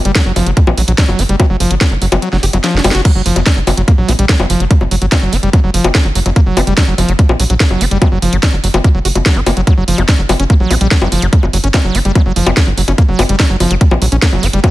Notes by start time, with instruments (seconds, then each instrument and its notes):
0.05 analog synth bass F#1, acid bass G3, closed hi-hat
0.15 acid bass F#3, kick, snare, closed hi-hat
0.26 analog synth bass F#1, acid bass F#3
0.36 analog synth bass F#1, acid bass F3, open hi-hat, high bongo
0.46 analog synth bass F#1, acid bass F#3, closed hi-hat
0.57 acid bass G3, kick, closed hi-hat
0.67 analog synth bass A#1, acid bass F#3, high bongo
0.78 analog synth bass A#1, acid bass F#3, open hi-hat
0.88 analog synth bass A#1, acid bass F#3, closed hi-hat
0.98 acid bass F#3, kick, snare, closed hi-hat
1.09 analog synth bass F#1, acid bass F#3, high bongo
1.19 analog synth bass F#1, acid bass C#4, open hi-hat
1.29 analog synth bass F#1, acid bass G3, closed hi-hat
1.40 acid bass F#3, kick, closed hi-hat, high bongo
1.50 analog synth bass F#1, acid bass F#3
1.60 analog synth bass F#1, acid bass F3, open hi-hat
1.71 analog synth bass G1, acid bass F#3, closed hi-hat
1.81 acid bass G3, kick, snare, closed hi-hat, high bongo
1.91 analog synth bass F#1, acid bass F#3
2.02 analog synth bass F#1, acid bass F#3, open hi-hat
2.12 analog synth bass F#1, acid bass F#3, closed hi-hat, high bongo
2.22 acid bass F#3, closed hi-hat
2.33 analog synth bass F#1, acid bass F#3, snare
2.43 analog synth bass F#1, acid bass G4, open hi-hat
2.53 analog synth bass F#1, acid bass F#3, closed hi-hat, high bongo
2.64 acid bass F3, snare, closed hi-hat
2.74 analog synth bass F#1, acid bass F#3, snare
2.84 analog synth bass F#1, acid bass G3, open hi-hat, high bongo
2.91 analog synth bass F#1, acid bass F#4, snare, closed hi-hat
3.05 acid bass F#3, kick, closed hi-hat, crash
3.15 analog synth bass F#1, acid bass F#3
3.26 analog synth bass F#1, acid bass F3, open hi-hat
3.36 analog synth bass F#1, acid bass F#3, closed hi-hat, high bongo
3.46 acid bass G3, kick, snare, closed hi-hat
3.57 analog synth bass F#1, acid bass F#3
3.67 analog synth bass F#1, acid bass F#3, open hi-hat, high bongo
3.77 analog synth bass F#1, acid bass F#3, closed hi-hat
3.88 acid bass A#3, kick, closed hi-hat
3.98 analog synth bass A#1, acid bass F#3
4.08 analog synth bass A#1, acid bass C#4, open hi-hat, high bongo
4.19 analog synth bass A#1, acid bass G3, closed hi-hat
4.29 acid bass F#3, kick, snare, closed hi-hat
4.40 analog synth bass F#1, acid bass F#3, high bongo
4.50 analog synth bass F#1, acid bass F3, open hi-hat
4.60 analog synth bass F#1, acid bass F#3, closed hi-hat
4.71 acid bass G3, kick, closed hi-hat
4.81 analog synth bass F#1, acid bass F#3, high bongo
4.91 analog synth bass F#1, acid bass F#3, open hi-hat
5.02 analog synth bass G1, acid bass F#3, closed hi-hat
5.12 acid bass A#3, kick, snare, closed hi-hat, high bongo
5.22 analog synth bass F#1, acid bass F#3
5.33 analog synth bass F#1, acid bass C#4, open hi-hat
5.43 analog synth bass F#1, acid bass G3, closed hi-hat
5.53 acid bass F#3, kick, closed hi-hat, high bongo
5.64 analog synth bass F#1, acid bass F#3
5.74 analog synth bass F#1, acid bass F3, open hi-hat
5.84 analog synth bass F#1, acid bass F#3, closed hi-hat, high bongo
5.95 acid bass G3, kick, snare, closed hi-hat
6.05 analog synth bass G1, acid bass F#3
6.15 analog synth bass F#1, acid bass F#3, open hi-hat
6.26 analog synth bass F#1, acid bass F#3, closed hi-hat, high bongo
6.36 acid bass A#3, kick, closed hi-hat
6.46 analog synth bass F#1, acid bass F#3
6.57 analog synth bass F#1, acid bass C#4, open hi-hat, high bongo
6.67 analog synth bass F#1, acid bass G3, closed hi-hat
6.77 acid bass F#3, kick, snare, closed hi-hat
6.88 analog synth bass F#1, acid bass F#3
6.98 analog synth bass F#1, acid bass F3, open hi-hat, high bongo
7.08 analog synth bass F#1, acid bass F#3, closed hi-hat
7.19 acid bass G3, kick, closed hi-hat
7.29 analog synth bass A#1, acid bass F#3, high bongo
7.40 analog synth bass A#1, acid bass F#3, open hi-hat
7.50 analog synth bass A#1, acid bass F#3, closed hi-hat
7.60 acid bass A#3, kick, snare, closed hi-hat
7.71 analog synth bass F#1, acid bass F#3, high bongo
7.81 analog synth bass F#1, acid bass C#4, open hi-hat
7.91 analog synth bass F#1, acid bass G3, closed hi-hat
8.02 acid bass F#3, kick, closed hi-hat, high bongo
8.12 analog synth bass F#1, acid bass F#3
8.22 analog synth bass F#1, acid bass F3, open hi-hat
8.33 analog synth bass G1, acid bass F#3, closed hi-hat
8.43 acid bass G3, kick, snare, closed hi-hat, high bongo
8.53 analog synth bass F#1, acid bass F#3
8.64 analog synth bass F#1, acid bass F#3, open hi-hat
8.74 analog synth bass F#1, acid bass F#3, closed hi-hat, high bongo
8.84 acid bass A#3, kick, closed hi-hat
8.95 analog synth bass F#1, acid bass F#3
9.05 analog synth bass F#1, acid bass F#4, open hi-hat
9.15 analog synth bass F#1, acid bass F#3, closed hi-hat, high bongo
9.26 acid bass F#3, kick, snare, closed hi-hat
9.36 analog synth bass G1, acid bass C#4
9.46 analog synth bass F#1, acid bass A#3, open hi-hat, high bongo
9.57 analog synth bass F#1, acid bass F#3, closed hi-hat
9.67 acid bass F#3, kick, closed hi-hat
9.77 analog synth bass F#1, acid bass F#3
9.88 analog synth bass F#1, acid bass F3, open hi-hat
9.98 analog synth bass F#1, acid bass F#3, closed hi-hat, high bongo
10.09 acid bass G3, kick, snare, closed hi-hat
10.19 analog synth bass F#1, acid bass F#3
10.29 analog synth bass F#1, acid bass F#3, open hi-hat, high bongo
10.40 analog synth bass F#1, acid bass C#4, closed hi-hat
10.50 acid bass A#3, kick, closed hi-hat
10.60 analog synth bass A#1, acid bass F#3
10.71 analog synth bass A#1, acid bass C#4, open hi-hat, high bongo
10.81 analog synth bass A#1, acid bass G3, closed hi-hat
10.91 acid bass F#3, kick, snare, closed hi-hat
11.02 analog synth bass F#1, acid bass F#3, high bongo
11.12 analog synth bass F#1, acid bass F3, open hi-hat
11.22 analog synth bass F#1, acid bass F#3, closed hi-hat
11.33 acid bass G3, kick, closed hi-hat
11.43 analog synth bass F#1, acid bass F#3, high bongo
11.53 analog synth bass F#1, acid bass F#3, open hi-hat
11.64 analog synth bass G1, acid bass C#4, closed hi-hat
11.74 acid bass A#3, kick, snare, closed hi-hat, high bongo
11.84 analog synth bass F#1, acid bass F#3
11.95 analog synth bass F#1, acid bass C#4, open hi-hat
12.05 analog synth bass F#1, acid bass G3, closed hi-hat
12.15 acid bass F#3, kick, closed hi-hat, high bongo
12.26 analog synth bass F#1, acid bass F#3
12.36 analog synth bass F#1, acid bass F3, open hi-hat
12.46 analog synth bass F#1, acid bass F#3, closed hi-hat, high bongo
12.57 acid bass G3, kick, snare, closed hi-hat
12.67 analog synth bass G1, acid bass F#3
12.78 analog synth bass F#1, acid bass F#3, open hi-hat
12.88 analog synth bass F#1, acid bass C#4, closed hi-hat, high bongo
12.98 acid bass A#3, kick, closed hi-hat
13.09 analog synth bass F#1, acid bass F#3
13.19 analog synth bass F#1, acid bass C#4, open hi-hat, high bongo
13.29 analog synth bass F#1, acid bass G3, closed hi-hat
13.40 acid bass F#3, kick, snare, closed hi-hat
13.50 analog synth bass F#1, acid bass F#3
13.60 analog synth bass F#1, acid bass F3, open hi-hat, high bongo
13.71 analog synth bass F#1, acid bass F#3, closed hi-hat
13.81 acid bass G3, kick, closed hi-hat
13.91 analog synth bass A#1, acid bass F#3, high bongo
14.02 analog synth bass A#1, acid bass F#3, open hi-hat
14.12 analog synth bass A#1, acid bass C#4, closed hi-hat
14.22 acid bass A#3, kick, snare, closed hi-hat
14.33 analog synth bass F#1, acid bass F#3, high bongo
14.43 analog synth bass F#1, acid bass C#4, open hi-hat
14.53 analog synth bass F#1, acid bass G3, closed hi-hat
14.64 acid bass F#3, kick, closed hi-hat, high bongo